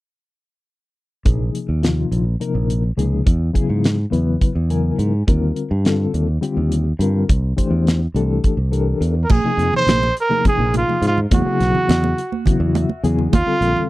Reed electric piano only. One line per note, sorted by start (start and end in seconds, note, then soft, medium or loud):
1.25 1.66 C3 medium
1.25 1.66 F3 medium
1.25 1.67 A#3 soft
1.25 1.67 D#4 medium
1.25 1.67 G#4 medium
1.82 2.24 C3 medium
1.82 2.24 F3 medium
1.82 2.24 A#3 medium
1.82 2.24 D#4 medium
1.82 2.24 F4 medium
2.40 2.81 C3 medium
2.40 2.81 F3 medium
2.40 2.82 A#3 medium
2.40 2.82 D#4 medium
2.40 2.82 A#4 medium
2.97 3.26 C3 medium
2.97 3.26 F3 medium
2.97 3.26 A#3 medium
2.97 3.27 D#4 medium
2.97 3.27 G#4 medium
3.53 3.95 C#3 medium
3.53 3.96 F#3 medium
3.53 3.96 B3 medium
3.53 3.96 E4 medium
3.53 3.96 G#4 medium
4.10 4.53 C#3 medium
4.10 4.53 F#3 medium
4.10 4.53 B3 medium
4.10 4.53 E4 medium
4.10 4.54 B4 medium
4.70 5.11 C#3 medium
4.70 5.11 F#3 medium
4.70 5.11 B3 medium
4.70 5.12 E4 medium
4.70 5.12 A#4 medium
4.70 5.24 G#5 medium
5.28 5.69 D3 medium
5.28 5.69 G3 medium
5.28 5.69 C4 medium
5.28 5.69 F4 medium
5.28 5.69 A#4 medium
5.84 6.26 D3 medium
5.84 6.26 G3 medium
5.84 6.26 C4 medium
5.84 6.26 F4 medium
5.84 6.27 A4 medium
6.41 6.83 D3 medium
6.41 6.83 G3 medium
6.41 6.84 C4 medium
6.41 6.84 F4 medium
6.41 6.84 G4 medium
7.00 7.29 D3 medium
7.00 7.29 G3 medium
7.00 7.29 C4 medium
7.00 7.29 F4 medium
7.00 7.30 A#4 medium
7.57 7.98 E3 medium
7.57 7.98 A3 medium
7.57 7.99 D4 medium
7.57 7.99 G4 medium
7.57 7.99 C5 medium
8.15 8.56 E3 medium
8.15 8.56 A3 medium
8.15 8.57 D4 medium
8.15 8.57 G4 medium
8.15 8.57 A4 medium
8.71 9.13 E3 medium
8.71 9.14 D4 medium
8.71 9.14 G4 medium
8.71 9.13 A4 medium
8.71 9.14 A#4 medium
9.44 10.06 C3 medium
9.44 10.06 F3 medium
9.44 10.07 A#3 medium
9.44 10.07 D#4 medium
9.44 10.07 G#4 medium
10.29 10.40 C3 medium
10.29 10.41 F3 medium
10.29 10.41 A#3 medium
10.29 10.41 D#4 medium
10.29 10.41 G#4 medium
10.45 11.07 C3 medium
10.45 11.07 F3 medium
10.45 11.07 A#3 medium
10.45 11.07 D#4 medium
10.45 11.07 G#4 medium
11.30 11.41 C#3 medium
11.30 11.41 F#3 medium
11.30 11.41 B3 medium
11.30 11.42 E4 medium
11.30 11.42 G#4 medium
11.45 12.17 C#3 medium
11.45 12.18 F#3 medium
11.45 12.18 B3 medium
11.45 12.18 E4 medium
11.45 12.18 G#4 medium
12.46 12.88 C#3 medium
12.46 12.88 F#3 medium
12.46 12.88 B3 medium
12.46 12.88 E4 medium
12.46 12.88 F#4 medium
12.75 13.02 E5 medium
13.04 13.33 C#3 medium
13.04 13.33 F#3 medium
13.04 13.33 B3 medium
13.04 13.33 E4 medium
13.04 13.33 G#4 medium
13.04 13.31 G#5 medium
13.46 13.89 D3 medium
13.46 13.89 G3 medium
13.46 13.89 C4 medium
13.46 13.89 F4 medium
13.46 13.89 A4 medium